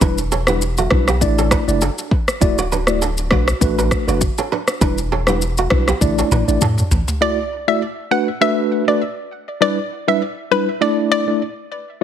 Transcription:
0.01 sub bass E1, tine electric piano G3 D4 E4 B4, kora D4 B4, kick, shaker
0.18 shaker
0.32 kora C#4 A4, shaker
0.47 tine electric piano G3 D4 E4 B4, kora B3 G4, cross-stick, shaker
0.62 shaker
0.78 kora A3 F#4, shaker
0.91 sub bass B1, tine electric piano G3 D4 E4 B4, kick, cross-stick
1.08 kora B3 G4, cross-stick, shaker
1.21 sub bass A1, tine electric piano A3 D4 E4 D5, kick, shaker
1.38 kora C#4 A4, shaker
1.51 kora D4 B4, kick, cross-stick, shaker
1.67 sub bass F#1, tine electric piano A3 D4 E4 D5, shaker
1.81 kora D4 A4, shaker
1.98 shaker
2.11 kick
2.28 cross-stick, shaker
2.41 sub bass D1, tine electric piano A3 E4 F#4 D5, kick, shaker
2.58 kora F#4 D5, shaker
2.72 kora D4 B4, shaker
2.87 tine electric piano A3 E4 F#4 D5, cross-stick, shaker
3.02 kora D4 A4, shaker
3.18 shaker
3.31 sub bass B1, tine electric piano A3 D4 F#4 B4, kora F#4 D5, kick, cross-stick
3.48 cross-stick, shaker
3.61 sub bass A1, tine electric piano A3 D4 F#4 B4, kick, shaker
3.79 kora D4 B4, shaker
3.91 kick, cross-stick, shaker
4.07 sub bass F#1, tine electric piano A3 D4 F#4 B4, kora F#4 D5, shaker
4.21 kick, shaker
4.38 kora C#4 A4, shaker
4.52 kora D4 B4
4.68 cross-stick, shaker
4.81 sub bass E1, tine electric piano G3 D4 E4 B4, kora D4 B4, kick, shaker
4.98 shaker
5.12 kora C#4 A4
5.27 tine electric piano G3 D4 E4 B4, kora B3 G4, cross-stick, shaker
5.42 shaker
5.58 kora A3 F#4, shaker
5.70 sub bass B1, tine electric piano G3 D4 E4 B4, kick, cross-stick
5.88 kora B3 G4, cross-stick, shaker
6.01 sub bass A1, tine electric piano A3 D4 E4 D5, kick, high tom, shaker
6.19 kora C#4 A4, shaker
6.31 sub bass A1, kora D4 B4, mid tom, shaker
6.48 sub bass A1, tine electric piano A3 D4 E4 D5, shaker
6.61 sub bass A2, kora D4 A4, mid tom, shaker
6.78 mid tom, shaker
6.91 sub bass A1, floor tom, shaker
7.08 floor tom, shaker
7.21 tine electric piano A3 E4 F#4 D5, synth pluck D5
7.68 tine electric piano A3 E4 F#4 D5, synth pluck E5
8.11 tine electric piano A3 D4 F#4 B4, synth pluck F#5
8.41 tine electric piano A3 D4 F#4 B4, synth pluck E5
8.87 tine electric piano A3 D4 F#4 B4, synth pluck D5
9.61 tine electric piano G3 D4 E4 B4, synth pluck D5
10.07 tine electric piano G3 D4 E4 B4, synth pluck E5
10.51 tine electric piano G3 D4 E4 B4, synth pluck B4
10.81 tine electric piano A3 D4 E4 D5, synth pluck D5
11.12 synth pluck D5
11.27 tine electric piano A3 D4 E4 D5

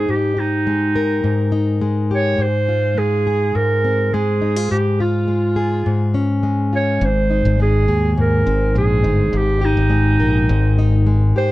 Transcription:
Already playing: steel-string acoustic guitar G#3 C4 D#4 G#4, clarinet G#4
0.09 steel-string acoustic guitar G#2, clarinet G4
0.37 clarinet D#4, steel-string acoustic guitar G4
0.67 steel-string acoustic guitar G#3
0.96 steel-string acoustic guitar A#4
1.24 steel-string acoustic guitar G#2
1.52 steel-string acoustic guitar D#4
1.81 steel-string acoustic guitar G#3
2.11 steel-string acoustic guitar G4, clarinet C#5
2.38 steel-string acoustic guitar G#2, clarinet C5
2.69 steel-string acoustic guitar F4
2.98 steel-string acoustic guitar G#3, clarinet G#4
3.27 steel-string acoustic guitar G#4
3.55 steel-string acoustic guitar G#2, clarinet A#4
3.84 steel-string acoustic guitar C4
4.14 steel-string acoustic guitar G#3, clarinet G#4
4.42 steel-string acoustic guitar D#4
4.56 steel-string acoustic guitar F4
4.71 steel-string acoustic guitar G#2, clarinet G4
5.00 steel-string acoustic guitar F4, clarinet F4
5.28 steel-string acoustic guitar G#3
5.56 steel-string acoustic guitar G#4
5.86 steel-string acoustic guitar G#2
6.14 steel-string acoustic guitar C#4
6.43 steel-string acoustic guitar G#3
6.73 steel-string acoustic guitar F4, clarinet C#5
7.01 fingered electric bass G#1, steel-string acoustic guitar G#2, clarinet C5
7.30 steel-string acoustic guitar D#4
7.45 fingered electric bass G#1
7.60 steel-string acoustic guitar G#3, clarinet G#4
7.88 fingered electric bass D#2, steel-string acoustic guitar G#4
8.18 steel-string acoustic guitar G#2, clarinet A#4
8.46 fingered electric bass G#1, steel-string acoustic guitar C4
8.75 fingered electric bass A#1, steel-string acoustic guitar G#3, clarinet G#4
9.03 fingered electric bass G1, steel-string acoustic guitar D#4
9.33 fingered electric bass G#1, steel-string acoustic guitar G#2
9.37 clarinet G4
9.61 clarinet D#4, steel-string acoustic guitar G4
9.77 fingered electric bass G#1
9.90 steel-string acoustic guitar G#3
10.20 fingered electric bass A#1, steel-string acoustic guitar A#4
10.49 fingered electric bass G#1, steel-string acoustic guitar G#2
10.79 steel-string acoustic guitar D#4
11.07 steel-string acoustic guitar G#3
11.36 steel-string acoustic guitar G4, clarinet C5

